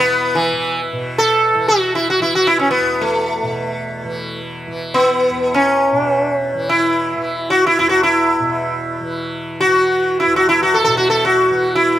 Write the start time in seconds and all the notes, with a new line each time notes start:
Already playing: E2 B2 E3 B3
0.35 E3
0.53 E3
0.93 B2
1.18 A4
1.55 E3
1.68 F#4
1.95 E4
2.10 F#4
2.20 E3 E4
2.35 F#4
2.47 E4
2.59 C#4
2.71 B3
2.81 E2
3.01 A3
3.43 B2
4.04 E3
4.67 E3
4.94 B3
5.31 E2
5.54 C#4
5.92 B2
5.97 D4
6.08 C#4
6.21 D4
6.33 C#4
6.54 E3
6.69 E4
7.16 E3
7.50 F#4
7.67 E4
7.79 E2 E4
7.89 F#4
8.03 E4
8.40 B2
9.01 E3
9.61 E3 F#4
10.20 E4
10.27 E2
10.36 F#4
10.49 E4
10.63 F#4
10.74 A4
10.85 B2 A4
10.97 F#4
11.10 A4
11.25 F#4
11.51 E3
11.75 E4